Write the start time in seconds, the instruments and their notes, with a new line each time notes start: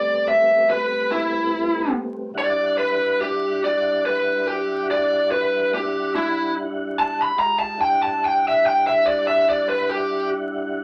Already playing: tonewheel organ G3 A3 B3 C4, lead electric guitar D5
0.28 lead electric guitar E5
0.70 lead electric guitar B4
1.11 lead electric guitar E4
2.34 tonewheel organ G3 D4 E4 F#5
2.38 lead electric guitar D5
2.78 lead electric guitar B4
3.21 lead electric guitar G4
3.64 lead electric guitar D5
4.06 lead electric guitar B4
4.47 lead electric guitar G4
4.91 lead electric guitar D5
5.31 lead electric guitar B4
5.74 lead electric guitar G4
6.16 lead electric guitar E4
6.99 lead electric guitar A5
7.22 lead electric guitar B5
7.36 tonewheel organ G#3 D#4 F4 G4, lead electric guitar A#5
7.59 lead electric guitar A5
7.77 tonewheel organ G3 D4 E4 F#5, lead electric guitar G5
8.03 lead electric guitar A5
8.25 lead electric guitar G5
8.48 lead electric guitar E5
8.66 lead electric guitar G5
8.87 lead electric guitar E5
9.06 lead electric guitar D5
9.27 lead electric guitar E5
9.49 lead electric guitar D5
9.69 lead electric guitar B4
9.89 lead electric guitar G4